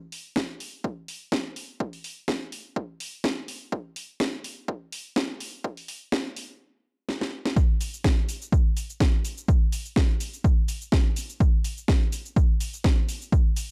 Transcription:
0.12 open hi-hat
0.36 kick, snare
0.60 open hi-hat
0.84 kick
1.08 open hi-hat
1.32 kick, snare
1.56 open hi-hat
1.80 kick
1.93 open hi-hat
2.04 open hi-hat
2.28 kick, snare
2.52 open hi-hat
2.76 kick
3.00 open hi-hat
3.24 kick, snare
3.48 open hi-hat
3.72 kick
3.96 open hi-hat
4.20 kick, snare
4.44 open hi-hat
4.68 kick
4.92 open hi-hat
5.16 kick, snare
5.40 open hi-hat
5.64 kick
5.77 open hi-hat
5.88 open hi-hat
6.12 kick, snare
6.36 open hi-hat
7.09 snare
7.21 snare
7.45 snare
7.56 kick, shaker
7.81 open hi-hat, shaker
7.94 shaker
8.04 kick, snare, shaker
8.29 open hi-hat, shaker
8.42 shaker
8.52 kick, shaker
8.77 open hi-hat, shaker
8.90 shaker
9.00 kick, snare, shaker
9.25 open hi-hat, shaker
9.38 shaker
9.48 kick, shaker
9.72 open hi-hat, shaker
9.85 shaker
9.96 kick, snare, shaker
10.20 open hi-hat, shaker
10.33 shaker
10.44 kick, shaker
10.68 open hi-hat, shaker
10.81 shaker
10.92 kick, snare, shaker
11.16 open hi-hat, shaker
11.29 shaker
11.40 kick, shaker
11.64 open hi-hat, shaker
11.78 shaker
11.88 kick, snare, shaker
12.12 open hi-hat, shaker
12.26 shaker
12.36 kick, shaker
12.61 open hi-hat, shaker
12.74 shaker
12.84 kick, snare, shaker
13.09 open hi-hat, shaker
13.22 shaker
13.32 kick, shaker
13.56 open hi-hat, shaker

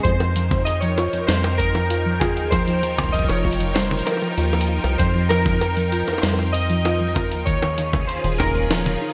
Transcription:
0.03 F2 F3 D#4 A#4 C5 G5, kick, closed hi-hat
0.20 F3, closed hi-hat, high bongo
0.36 F3, closed hi-hat
0.51 kick, closed hi-hat, mid tom
0.65 D#5, closed hi-hat
0.80 F3 C#5, closed hi-hat
0.98 F4, closed hi-hat, high bongo
1.13 F2, closed hi-hat
1.27 F2 G3 C5, snare, closed hi-hat
1.44 closed hi-hat, high bongo
1.58 A#4, kick, closed hi-hat
1.75 F3, closed hi-hat, high bongo
1.90 F4, closed hi-hat
2.06 F3
2.19 F4 G#4, kick, closed hi-hat, mid tom, high bongo
2.37 D#2, closed hi-hat
2.50 F3 C5, kick, closed hi-hat, high bongo
2.68 F3, closed hi-hat
2.83 F3, closed hi-hat
2.98 kick, closed hi-hat, mid tom, high bongo
3.04 kick
3.09 D#5, kick
3.14 kick, closed hi-hat
3.19 kick
3.24 C#5, kick
3.29 F1 F3, closed hi-hat, high bongo
3.45 F4, kick
3.53 closed hi-hat
3.60 F2, closed hi-hat
3.74 G3 C5, snare, closed hi-hat, high bongo
3.91 mid tom
3.99 closed hi-hat
4.05 A#4, closed hi-hat, high bongo
4.12 high bongo
4.17 high bongo
4.22 F3, high bongo
4.27 high bongo
4.32 high bongo
4.38 D#2 F4, closed hi-hat
4.53 F3, high bongo
4.61 closed hi-hat
4.69 F4
4.84 C2, closed hi-hat, high bongo
4.98 F2 F3 C5, kick, closed hi-hat
5.15 F3
5.29 F3 A#4, closed hi-hat, high bongo
5.46 kick, mid tom
5.61 closed hi-hat, high bongo
5.77 F3, closed hi-hat
5.92 F4, closed hi-hat
6.08 F2, closed hi-hat, high bongo
6.13 high bongo
6.18 C5, high bongo
6.23 F2 G3, snare, closed hi-hat, high bongo
6.28 high bongo
6.34 high bongo
6.39 closed hi-hat, high bongo
6.52 D#5, closed hi-hat
6.70 F3, closed hi-hat
6.85 F4, closed hi-hat, high bongo
7.01 F3
7.14 F4 A#4, kick, closed hi-hat, mid tom, high bongo
7.31 D#2, closed hi-hat
7.45 D#3 C#4 F4 G#4 C#5, kick, closed hi-hat
7.62 D#3, closed hi-hat, high bongo
7.78 D#3, closed hi-hat
7.93 kick, closed hi-hat, mid tom, high bongo
8.07 C5, closed hi-hat
8.24 D#1 D#3, closed hi-hat
8.38 D#4 A#4, kick, closed hi-hat, high bongo
8.44 kick
8.48 kick
8.51 D#2, kick
8.55 kick
8.59 kick
8.63 kick
8.67 F3, kick, snare, closed hi-hat, high bongo
8.86 closed hi-hat, mid tom
9.02 D#4

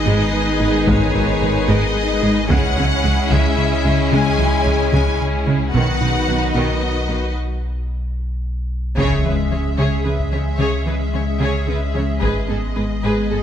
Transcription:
Already playing: G#1 D#3 G#3 B3 D#4 G#4 B4 D#5
0.06 G#1 G#2 G#3
0.34 G#3
0.60 G#1 G#2 G#3 D#4
0.87 G#1 G#2 G#3 C#5, taiko
1.14 G#1 G#2 F#3 B3
1.41 G#1 G#2 G#3 G#4
1.67 G#1 G#2 G#3 D#5
1.96 G#3
2.22 G#1 G#2 G#3 D#4
2.48 C#2 C#3 G#3 C#4 E4 G#4 C#5 F#5, taiko
2.76 C#2 C#3 E3 F#3
3.03 C#2 C#3 G#3 C#4
3.31 C#2 C#3 G#3 E5
3.58 C#3
3.84 C#2 C#3 G#3
4.11 C#2 C#3 G#3 G#5
4.38 C#2 C#3 E3 F#3
4.65 C#2 C#3 G#3 C#4
4.92 C#2 C#3 G#3 G#5
5.21 C#3
5.46 C#2 C#3 G#3
5.72 B1 B2 D#3 F#3 B3 D#4 F#4 B4 D#5 F#5, taiko
6.00 B1 B2 C#3 D#4
6.27 B1 B2 D#3 B4
6.54 B1 B2 D#3 B3 D#5
6.83 B3
7.09 B1 B2 D#3 B3 F#4
8.97 C#2 C#3 G#3 C#4 G#4 C#5 E5, taiko, impact
9.23 C#3 E3 G#4 B4
9.51 C#3 E3 G#4 C#5
9.78 C#3 G#4 C#5
10.04 C#3 C#4 G#4 B4
10.19 taiko
10.32 C#3 E3 G#4 C#5
10.59 C#3 G#4 C#5
10.86 C#3 E3 G#4 B4
11.12 C#3 E3 G#4 C#5
11.40 C#3 G#4 C#5
11.66 C#3 C#4 G#4 B4
11.94 C#3 E3 G#4 C#5
12.21 G#1 G#2 G#3 B3 G#4 B4 D#5, taiko
12.48 G#2 B3 G#4 A4
12.75 G#2 B3 G#4 B4
13.03 G#2 G#3 G#4 B4
13.30 G#2 G#4 A4

